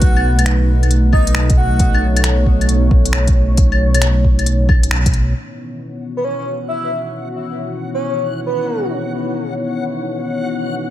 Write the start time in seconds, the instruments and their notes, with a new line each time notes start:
Already playing: detuned saw bass B1, analog synth pad A3 D#4 B4
0.02 digital synth lead F#5, kick, closed hi-hat
0.17 claves
0.39 closed hi-hat, claves
0.46 finger snap, closed hi-hat
0.83 closed hi-hat, claves
0.91 closed hi-hat
1.13 digital synth lead D#5, kick, claves
1.27 closed hi-hat
1.35 finger snap
1.50 kick, closed hi-hat
1.57 digital synth lead F#5
1.79 analog synth pad C#5, kick, closed hi-hat
1.94 claves
2.17 closed hi-hat, claves
2.24 finger snap, closed hi-hat
2.46 kick
2.61 closed hi-hat, claves
2.69 closed hi-hat
2.91 kick
3.06 closed hi-hat
3.13 finger snap
3.27 kick, closed hi-hat
3.57 kick, closed hi-hat
3.72 claves
3.94 closed hi-hat, claves
4.02 finger snap, closed hi-hat
4.25 kick
4.39 closed hi-hat, claves
4.46 closed hi-hat
4.69 kick, claves
4.83 closed hi-hat
4.91 finger snap
5.06 kick, closed hi-hat
5.14 closed hi-hat
5.35 analog synth pad B3 D#4 E4 C#5, synth texture F#4 F#5
6.17 digital synth lead B4
6.25 digital synth lead C#5
6.39 digital synth lead C#5
6.68 digital synth lead E5
7.94 digital synth lead C#5
8.46 digital synth lead B4